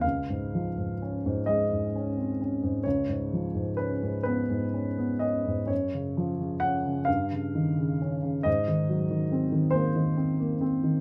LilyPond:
<<
  \new Staff \with { instrumentName = "Grand piano" } { \time 12/8 \key des \major \tempo 4. = 43 f''4. ees''4. des''4 ces''8 ces''4 ees''8 | des''4 ges''8 f''4. ees''4. c''8 r4 | }
  \new Staff \with { instrumentName = "Grand piano" } { \clef bass \time 12/8 \key des \major des,16 aes,16 f16 aes,16 des'16 aes,16 aes16 aes,16 des'16 c'16 des'16 aes,16 des,16 aes,16 f16 aes,16 des'16 aes,16 ces'16 aes,16 des'16 ces'16 des'16 aes,16 | ges,16 des16 f16 des16 des'16 des16 g,16 des16 ees16 des16 des'16 des16 aes,16 ees16 ges16 ees16 c'16 ees16 bes16 ees16 c'16 bes16 c'16 ees16 | }
>>